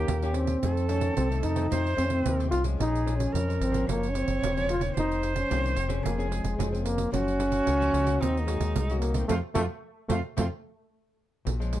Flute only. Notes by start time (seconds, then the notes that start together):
Already playing: G4
0.62 A4
1.71 C5
2.78 G#4
3.33 A#4
3.88 C#5
4.94 C5
6.03 G#4
7.12 F#4
8.21 D#4
9.29 F4
9.55 F4
10.10 F4
10.38 F4